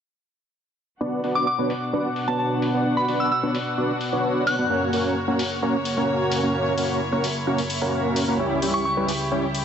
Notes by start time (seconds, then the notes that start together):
1.01 B2 B3 D4 F#4 B4 D5 F#5
1.24 B3 D4 F#4 B4 D5, open hi-hat
1.35 D6
1.47 D6
1.58 B3 D4 F#4 B4 C#5
1.70 open hi-hat
1.93 B3 D4 F#4 B4 D5
2.16 open hi-hat
2.28 B3 D4 F#4 B4 C#5 A5
2.39 A5
2.62 open hi-hat
2.74 B3 D4 F#4 B4 D5
2.85 B3 D4 F#4 B4 D5
2.97 B5
3.08 B3 D4 F#4 B4 D5, open hi-hat
3.20 E6
3.32 E6
3.43 B3 D4 F#4 B4 C#5
3.55 open hi-hat
3.78 B3 D4 F#4 B4 D5
4.01 open hi-hat
4.12 B3 D4 F#4 B4 C#5
4.47 F#6, open hi-hat
4.58 B3 D4 F#4 B4 D5
4.70 F#2 C#3 A#3 C#4 F#4 A#4 C#5
4.93 A#3 C#4 F#4 A#4 C#5, open hi-hat
5.28 A#3 C#4 F#4 A#4 C#5
5.39 open hi-hat
5.62 A#3 C#4 F#4 A#4 C#5
5.85 open hi-hat
5.97 A#3 C#4 F#4 A#4 C#5
6.32 open hi-hat
6.43 A#3 C#4 F#4 A#4 C#5
6.55 A#3 C#4 E4 F#4 A#4 C#5
6.78 A#3 C#4 F#4 A#4 C#5, open hi-hat
7.12 A#3 C#4 F#4 A#4 C#5
7.24 open hi-hat
7.47 A#3 C#4 F#4 A#4 C#5
7.58 open hi-hat
7.70 open hi-hat
7.81 A#3 C#4 F#4 A#4 C#5
8.16 open hi-hat
8.28 A#3 C#4 F#4 A#4 C#5
8.39 C#2 G3 C#4 E4 G4 C#5
8.62 G3 C#4 E4 G4 C#5, open hi-hat
8.74 C#6
8.85 C#6
8.97 G3 C#4 E4 G4 B4
9.08 open hi-hat
9.32 G3 C#4 E4 G4 C#5
9.55 open hi-hat